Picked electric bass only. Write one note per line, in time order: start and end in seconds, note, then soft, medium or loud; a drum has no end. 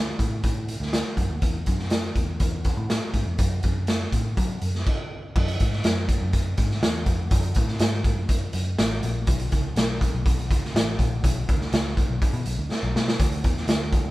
0.00 0.12 D2 medium
0.19 0.40 A2 medium
0.44 0.75 A2 medium
0.80 1.01 D2 medium
1.17 1.28 F#2 medium
1.30 1.40 D#2 medium
1.42 1.63 E2 loud
1.67 2.08 F#2 medium
2.15 2.36 E2 medium
2.40 2.72 E2 medium
2.77 2.98 A2 medium
3.13 3.24 G#2 medium
3.26 3.37 F2 medium
3.39 3.60 F#2 loud
3.64 4.05 F#2 medium
4.12 4.33 A2 medium
4.37 4.58 F#3 medium
4.62 4.83 F#2 medium
5.36 5.56 F#2 medium
5.61 5.81 G#2 medium
5.84 6.16 F#2 loud
6.22 6.53 F#2 medium
6.58 6.79 G#2 medium
6.83 7.03 E2 medium
7.06 7.27 F2 medium
7.31 7.52 F#2 loud
7.56 7.77 A2 medium
7.80 8.17 G#2 medium
8.17 8.48 F#2 medium
8.54 8.75 F#2 medium
8.79 9.00 A1 medium
9.03 9.24 A#1 medium
9.27 9.48 B1 loud
9.52 9.73 C#2 medium
9.76 10.07 B1 medium
10.13 10.51 B1 medium
10.51 10.71 C#2 medium
10.74 10.95 A1 medium
10.99 11.20 A#1 medium
11.24 11.44 B1 loud
11.49 11.69 D2 medium
11.72 12.03 C#2 loud
12.09 12.20 B1 medium
12.33 12.44 B2 medium
12.46 12.56 B1 medium
12.58 12.68 D2 medium
12.71 muted picked electric bass stroke soft
12.83 12.93 B1 medium
12.95 13.16 B2 medium
13.20 13.44 D2 loud
13.44 13.65 E2 medium
13.68 13.99 D2 medium
14.05 14.11 D2 medium